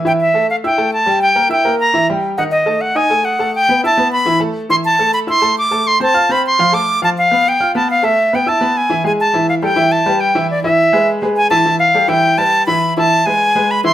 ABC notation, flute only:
X:1
M:4/4
L:1/8
Q:1/4=207
K:Am
V:1 name="Flute"
g e2 f g2 a2 | g2 g2 _b2 z2 | ^f ^d2 f ^g2 f2 | g2 a2 b2 z2 |
c' a2 b c'2 d'2 | c' a2 b c'2 d'2 | a f2 g2 a f e- | e g a2 ^g2 g a- |
a f g2 a2 g2 | d e4- e ^g a- | a f2 g2 a2 b- | b a2 ^g3 b c' |]